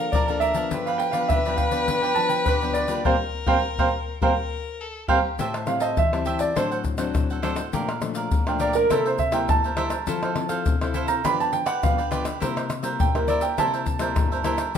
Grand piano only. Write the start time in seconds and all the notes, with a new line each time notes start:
Already playing: F5
0.12 D5
0.40 E5
0.86 F5
0.98 G5
1.11 F5
1.28 E5
1.50 G5
1.56 F5
2.02 G5
2.15 A5
2.29 G5
2.45 B4
2.73 D5
3.05 C5 F5 G5
3.47 C5 F5 G5
3.79 C5 F5 G5
4.23 C5 F5 G5
5.09 C5 F5 G5
5.68 F5
5.81 D#5
5.98 E5
6.40 D5
6.57 C5
8.48 G5
8.61 D5
8.75 A#4
8.91 A4
9.07 C5
9.19 E5
9.33 G5
9.49 A5
11.08 A#5
11.25 B5
11.40 A5
11.53 G5
11.67 F#5
11.83 F5
13.00 G5
13.16 A#4
13.28 D5
13.42 G5
13.59 A5